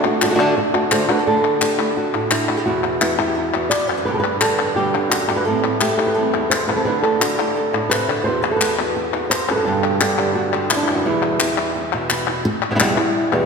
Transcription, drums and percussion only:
0.04 clap
0.22 clap
0.39 clap
0.75 clap
0.91 clap
1.09 clap
1.44 clap
1.61 clap
1.79 clap
2.14 clap
2.31 clap
2.49 clap
2.84 clap
3.01 clap
3.19 clap
3.54 clap
3.71 clap
3.90 clap
4.24 clap
4.41 clap
4.59 clap
4.95 clap
5.12 clap
5.29 clap
5.64 clap
5.81 clap
5.99 clap
6.34 clap
6.52 clap
6.69 clap
7.04 clap
7.22 clap
7.39 clap
7.75 clap
7.92 clap
8.10 clap
8.44 clap
8.61 clap
8.79 clap
9.14 clap
9.31 clap
9.49 clap
9.84 clap
10.01 clap
10.18 clap
10.53 clap
10.70 clap
10.88 clap
11.22 clap
11.40 clap
11.58 clap
11.92 clap
12.10 clap
12.27 clap
12.62 clap
12.80 clap
12.98 clap
13.33 clap

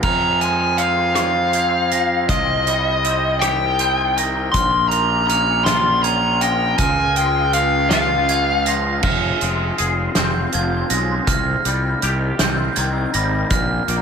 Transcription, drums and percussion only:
0.03 kick, crash
0.41 closed hi-hat
0.78 closed hi-hat
1.16 cross-stick, closed hi-hat
1.53 closed hi-hat
1.91 closed hi-hat
2.29 kick, closed hi-hat
2.67 closed hi-hat
3.04 closed hi-hat
3.42 cross-stick, closed hi-hat
3.79 closed hi-hat
4.18 closed hi-hat
4.54 kick, closed hi-hat
4.91 closed hi-hat
5.29 closed hi-hat
5.66 snare, closed hi-hat
6.04 closed hi-hat
6.41 closed hi-hat
6.78 kick, closed hi-hat
7.16 closed hi-hat
7.53 closed hi-hat
7.91 snare, closed hi-hat
8.29 closed hi-hat
8.66 closed hi-hat
9.03 kick, crash
9.41 closed hi-hat
9.78 closed hi-hat
10.15 snare, closed hi-hat
10.52 closed hi-hat
10.90 closed hi-hat
11.27 kick, closed hi-hat
11.65 closed hi-hat
12.02 closed hi-hat
12.39 snare, closed hi-hat
12.76 closed hi-hat
13.14 closed hi-hat
13.50 kick, closed hi-hat
13.88 closed hi-hat

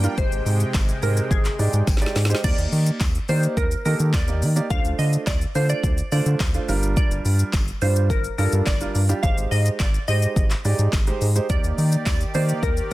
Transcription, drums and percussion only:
0.04 closed hi-hat, shaker
0.18 kick, closed hi-hat, shaker
0.32 closed hi-hat, shaker
0.46 open hi-hat, shaker
0.60 closed hi-hat, shaker
0.74 kick, snare, clap, closed hi-hat, tambourine, shaker
0.89 closed hi-hat, shaker
1.02 open hi-hat, shaker
1.17 closed hi-hat, shaker
1.31 kick, closed hi-hat, shaker
1.45 clap, closed hi-hat, shaker
1.59 open hi-hat, shaker
1.73 closed hi-hat, shaker
1.87 kick, snare, closed hi-hat, tambourine, shaker
1.97 snare
2.01 closed hi-hat, shaker
2.06 snare
2.16 snare, open hi-hat, shaker
2.25 snare
2.30 closed hi-hat, shaker
2.35 snare
2.44 kick, closed hi-hat, crash, shaker
2.58 closed hi-hat, shaker
2.72 open hi-hat, shaker
2.86 closed hi-hat, shaker
3.00 kick, snare, clap, closed hi-hat, tambourine, shaker
3.15 closed hi-hat, shaker
3.29 open hi-hat, shaker
3.43 closed hi-hat, shaker
3.57 kick, closed hi-hat, shaker
3.71 closed hi-hat, shaker
3.85 open hi-hat, shaker
4.00 closed hi-hat, shaker
4.14 kick, snare, clap, closed hi-hat, tambourine, shaker
4.28 closed hi-hat, shaker
4.42 open hi-hat, shaker
4.56 closed hi-hat, shaker
4.70 kick, closed hi-hat, shaker
4.85 closed hi-hat, shaker
4.99 open hi-hat, shaker
5.13 closed hi-hat, shaker
5.27 kick, snare, clap, closed hi-hat, tambourine, shaker
5.41 closed hi-hat, shaker
5.55 open hi-hat, shaker
5.69 closed hi-hat, shaker
5.83 kick, closed hi-hat, shaker
5.98 closed hi-hat, shaker
6.12 open hi-hat, shaker
6.26 closed hi-hat, shaker
6.40 kick, snare, clap, closed hi-hat, tambourine, shaker
6.54 closed hi-hat, shaker
6.69 open hi-hat, shaker
6.83 closed hi-hat, shaker
6.97 kick, closed hi-hat, shaker
7.11 closed hi-hat, shaker
7.25 open hi-hat, shaker
7.39 closed hi-hat, shaker
7.53 kick, snare, clap, closed hi-hat, tambourine, shaker
7.68 closed hi-hat, shaker
7.81 open hi-hat, shaker
7.96 closed hi-hat, shaker
8.10 kick, closed hi-hat, shaker
8.24 closed hi-hat, shaker
8.38 open hi-hat, shaker
8.52 closed hi-hat, shaker
8.66 kick, snare, clap, closed hi-hat, tambourine, shaker
8.81 closed hi-hat, shaker
8.95 open hi-hat, shaker
9.09 closed hi-hat, shaker
9.23 kick, closed hi-hat, shaker
9.38 closed hi-hat, shaker
9.52 open hi-hat, shaker
9.66 closed hi-hat, shaker
9.80 kick, snare, clap, closed hi-hat, tambourine, shaker
9.94 closed hi-hat, shaker
10.08 open hi-hat, shaker
10.22 closed hi-hat, shaker
10.36 kick, closed hi-hat, shaker
10.50 clap, closed hi-hat, shaker
10.65 open hi-hat, shaker
10.79 closed hi-hat, shaker
10.93 kick, snare, clap, closed hi-hat, tambourine, shaker
11.07 closed hi-hat, shaker
11.21 open hi-hat, shaker
11.36 closed hi-hat, shaker
11.50 kick, closed hi-hat, shaker
11.64 closed hi-hat, shaker
11.78 open hi-hat, shaker
11.92 closed hi-hat, shaker
12.06 kick, snare, clap, closed hi-hat, tambourine, shaker
12.21 closed hi-hat, shaker
12.34 open hi-hat, shaker
12.49 closed hi-hat, shaker
12.63 kick, closed hi-hat, shaker
12.77 closed hi-hat, shaker

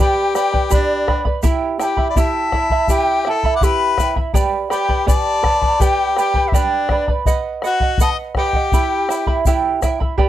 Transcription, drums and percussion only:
0.35 bombo rim, shaker
0.54 bombo low
0.71 bombo low, shaker
1.08 bombo rim, bombo low
1.25 bombo low
1.43 bombo low, shaker
1.79 bombo rim, shaker
1.97 bombo low
2.16 bombo low, shaker
2.52 bombo rim, bombo low
2.70 bombo low
2.88 bombo low, shaker
3.25 bombo rim
3.43 bombo low
3.61 bombo low, shaker
3.98 bombo rim, bombo low, shaker
4.16 bombo low
4.34 bombo low, shaker
4.70 bombo rim, shaker
4.89 bombo low
5.08 bombo low, shaker
5.44 bombo rim, bombo low
5.62 bombo low
5.80 bombo low, shaker
6.17 bombo rim, shaker
6.34 bombo low
6.52 bombo low, shaker
6.89 bombo rim, bombo low
7.08 bombo low
7.26 bombo low, shaker
7.62 bombo rim, shaker
7.80 bombo low
7.98 bombo low, shaker
8.35 bombo rim, bombo low
8.53 bombo low
8.72 bombo low, shaker
9.09 bombo rim, shaker
9.27 bombo low
9.45 bombo low, shaker
9.82 bombo rim, bombo low, shaker
10.01 bombo low
10.18 bombo low

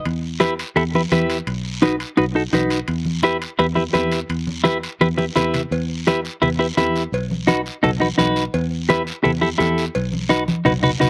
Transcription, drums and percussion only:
0.05 high conga, high timbale, long guiro
0.41 high conga, high timbale, short guiro
0.59 high timbale, short guiro
0.77 high conga, high timbale, long guiro
0.94 high conga
1.12 high conga, high timbale, short guiro
1.30 high timbale, short guiro
1.47 high conga, high timbale, long guiro
1.82 high conga, high timbale, short guiro
2.00 high timbale, short guiro
2.17 high conga, high timbale, long guiro
2.53 high conga, high timbale, low timbale, short guiro
2.70 high timbale, short guiro
2.88 high conga, high timbale, long guiro
3.05 high conga
3.23 high conga, high timbale, short guiro
3.42 high timbale, short guiro
3.59 high conga, high timbale, long guiro
3.77 high conga
3.94 high conga, high timbale, low timbale, short guiro
4.12 high timbale, short guiro
4.30 high conga, high timbale, long guiro
4.47 high conga
4.65 high conga, high timbale, short guiro
4.83 high timbale, short guiro
5.01 high conga, high timbale, long guiro
5.19 high conga
5.36 low conga, high timbale, low timbale, short guiro
5.54 low conga, high timbale, short guiro
5.72 cowbell, high conga, long guiro
6.07 cowbell, high conga, short guiro
6.25 short guiro
6.42 cowbell, high conga, low conga, long guiro
6.77 cowbell, high conga, low timbale, short guiro
6.96 short guiro
7.13 cowbell, high conga, long guiro
7.31 high conga
7.48 cowbell, high conga, short guiro
7.66 short guiro
7.84 cowbell, high conga, low conga, long guiro
8.01 high conga
8.18 cowbell, high conga, low timbale, short guiro
8.36 short guiro
8.54 cowbell, high conga, long guiro
8.89 cowbell, high conga, short guiro
9.07 short guiro
9.25 cowbell, high conga, low conga, long guiro
9.43 high conga
9.60 cowbell, high conga, low timbale, short guiro
9.78 short guiro
9.95 cowbell, high conga, long guiro
10.13 high conga
10.30 cowbell, high conga, short guiro
10.48 high conga, short guiro
10.65 cowbell, low conga, long guiro
10.83 low conga
11.01 cowbell, low conga, short guiro

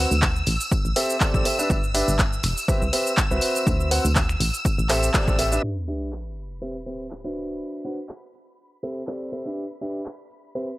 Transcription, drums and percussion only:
0.12 tambourine, shaker
0.22 kick, clap, tambourine, shaker
0.36 shaker
0.47 open hi-hat, tambourine
0.61 tambourine, shaker
0.72 kick, tambourine, shaker
0.85 shaker
0.96 open hi-hat, tambourine
1.10 tambourine, shaker
1.20 kick, clap, tambourine, shaker
1.34 kick, shaker
1.45 open hi-hat, tambourine
1.59 tambourine, shaker
1.70 kick, tambourine, shaker
1.84 shaker
1.95 open hi-hat, tambourine
2.08 tambourine, shaker
2.19 kick, clap, tambourine, shaker
2.33 shaker
2.43 finger snap, open hi-hat, tambourine
2.57 tambourine, shaker
2.68 kick, tambourine, shaker
2.82 shaker
2.93 open hi-hat, tambourine
3.07 tambourine, shaker
3.16 kick, clap, tambourine, shaker
3.31 shaker
3.41 open hi-hat, tambourine
3.55 tambourine, shaker
3.67 kick, tambourine, shaker
3.80 shaker
3.91 open hi-hat, tambourine
4.05 tambourine, shaker
4.16 kick, clap, tambourine, shaker
4.29 finger snap, shaker
4.40 open hi-hat, tambourine
4.54 tambourine, shaker
4.65 kick, tambourine, shaker
4.79 shaker
4.89 clap, open hi-hat, tambourine
5.02 tambourine, shaker
5.14 kick, clap, tambourine, shaker
5.28 kick, shaker
5.39 open hi-hat, tambourine
5.52 tambourine, shaker
6.12 clap
6.37 open hi-hat
6.86 open hi-hat
7.11 clap
7.36 open hi-hat
7.85 open hi-hat
8.09 clap
8.34 open hi-hat
8.83 open hi-hat
9.07 clap
9.32 open hi-hat
9.81 open hi-hat
10.06 clap
10.30 open hi-hat

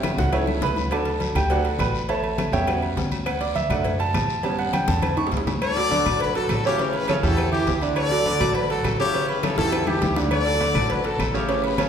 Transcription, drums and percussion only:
0.03 cowbell, high bongo, high conga, low timbale, low agogo, short guiro, claves
0.18 cowbell, high bongo, high conga, short guiro
0.33 cowbell, high conga, low agogo, long guiro, claves
0.47 low bongo, high conga, low agogo
0.62 cowbell, low bongo, high conga, low timbale, short guiro
0.76 low bongo, low agogo, short guiro
0.91 cowbell, high conga, low agogo, long guiro, claves
1.05 cowbell, high conga
1.20 cowbell, high conga, low timbale, low agogo, short guiro
1.35 cowbell, high conga, low conga, low agogo, short guiro, claves
1.50 cowbell, high conga, low agogo, long guiro
1.65 cowbell, high conga, low agogo
1.79 cowbell, high conga, low timbale, low agogo, short guiro, claves
1.95 high conga, short guiro
2.09 cowbell, high conga, low agogo, long guiro
2.23 high conga, low agogo
2.38 cowbell, high conga, low timbale, low agogo, short guiro, claves
2.53 cowbell, high conga, short guiro
2.67 cowbell, high conga, low agogo, long guiro, claves
2.82 high conga, low agogo
2.97 cowbell, high conga, low timbale, short guiro
3.11 high conga, low agogo, short guiro
3.26 cowbell, high conga, low agogo, long guiro, claves
3.41 cowbell, high conga
3.56 cowbell, high conga, low timbale, low agogo, short guiro
3.70 cowbell, high conga, low conga, low agogo, short guiro, claves
3.85 cowbell, high conga, low conga, low agogo, long guiro
4.00 cowbell, high conga, low agogo
4.14 cowbell, high conga, low timbale, low agogo, short guiro, claves
4.30 high conga, short guiro
4.43 cowbell, high conga, low agogo, long guiro
4.58 high conga, low agogo
4.73 cowbell, high conga, low timbale, low agogo, short guiro, claves
4.88 cowbell, high bongo, high conga, short guiro
5.02 cowbell, high bongo, high conga, low agogo, long guiro, claves
5.17 low bongo, high timbale, low agogo
5.27 low timbale
5.32 cowbell, low conga, short guiro
5.37 low timbale
5.47 low bongo, low conga, low timbale, low agogo, short guiro
5.62 cowbell, high conga, low agogo, long guiro, claves
5.77 cowbell, high conga
5.91 cowbell, high conga, low timbale, low agogo, short guiro
6.06 cowbell, high conga, low conga, low agogo, short guiro, claves
6.20 cowbell, high conga, low agogo, long guiro
6.35 cowbell, high conga, low agogo
6.49 cowbell, high conga, low timbale, low agogo, short guiro, claves
6.65 high conga, short guiro
6.78 cowbell, high conga, low agogo, long guiro
6.93 high conga, low agogo
7.08 cowbell, high conga, low timbale, low agogo, short guiro, claves
7.23 cowbell, high conga, short guiro
7.37 cowbell, high conga, low agogo, claves
7.53 high conga, low agogo
7.67 cowbell, high conga, low timbale, short guiro
7.81 low agogo, short guiro
7.96 cowbell, high conga, low agogo, long guiro, claves
8.11 cowbell, high conga
8.26 cowbell, high conga, low timbale, low agogo, short guiro
8.40 cowbell, high conga, low conga, low agogo, short guiro, claves
8.55 cowbell, high conga, low agogo, long guiro
8.70 cowbell, high conga, low agogo
8.84 cowbell, high conga, low timbale, low agogo, short guiro, claves
9.00 high conga, short guiro
9.14 cowbell, high conga, low agogo
9.29 high conga, low agogo
9.43 cowbell, high bongo, high conga, low timbale, low agogo, short guiro, claves
9.58 cowbell, high bongo, high conga, short guiro
9.72 cowbell, high bongo, high conga, low agogo, long guiro, claves
9.87 low bongo, high conga, low agogo
10.02 cowbell, low bongo, high conga, low timbale, short guiro
10.16 low bongo, low agogo, short guiro
10.31 cowbell, high conga, low agogo, long guiro, claves
10.45 cowbell, high conga
10.60 cowbell, high conga, low timbale, low agogo, short guiro
10.75 cowbell, high conga, low conga, low agogo, short guiro, claves
10.90 cowbell, high conga, low agogo, long guiro
11.04 cowbell, high conga, low agogo
11.19 cowbell, high conga, low timbale, low agogo, short guiro, claves
11.34 high conga, short guiro
11.49 cowbell, high conga, low agogo, long guiro
11.64 high conga, low agogo
11.78 cowbell, high conga, low timbale, low agogo, short guiro, claves

